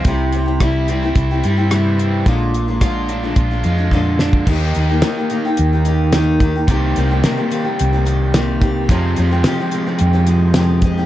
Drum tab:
CC |----------------|----------------|x---------------|----------------|
HH |x-x-x-x-x-x-x-x-|x-x-x-x-x-x-----|--x-x-x-x-x-x-x-|x-x-x-x-x-x-x-x-|
SD |----r-------r---|----r---------o-|----o-------o---|----o-------o---|
BD |o---o---o-------|o---o---o---o--o|o-------------o-|o-------------o-|

CC |----------------|
HH |x-x-x-x-x-x-x-x-|
SD |----o-------o---|
BD |o-------------o-|